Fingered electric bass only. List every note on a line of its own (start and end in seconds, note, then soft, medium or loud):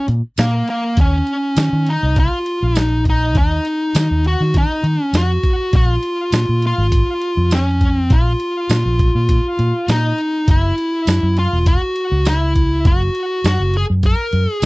0.08 0.21 A#2 loud
0.38 0.61 A#2 medium
0.97 1.20 D#2 medium
1.57 1.69 D#3 medium
1.73 1.96 D#3 medium
2.03 2.26 C2 medium
2.63 3.35 A#1 medium
3.35 3.58 D#2 medium
3.95 4.07 D#3 medium
4.11 4.34 D#2 medium
4.40 4.64 D#3 medium
4.83 4.96 D#3 loud
5.13 5.36 F2 medium
5.73 5.96 A#1 loud
6.33 6.45 A#2 medium
6.49 6.72 A#2 medium
6.78 7.01 G#1 medium
7.37 8.12 F2 medium
8.10 8.33 A#1 medium
8.69 8.82 A#2 medium
8.86 9.09 A#1 medium
9.15 9.38 A#2 medium
9.59 9.71 A#2 loud
9.88 10.11 A#2 medium
10.48 10.71 F#1 medium
11.07 11.20 F#2 medium
11.23 11.46 F#2 loud
11.53 11.76 E1 medium
12.12 12.87 C#2 medium
12.85 13.08 F#1 medium
13.44 13.57 F#2 medium
13.60 13.83 F#1 medium
13.90 14.13 F#2 medium
14.33 14.45 F#2 loud
14.62 14.66 C2 medium